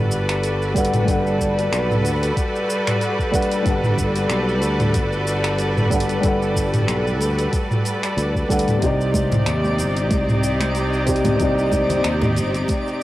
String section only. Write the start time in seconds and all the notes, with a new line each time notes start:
Already playing: G3 F#4 A4 B4 D5
8.82 C3 C4 D#4 G4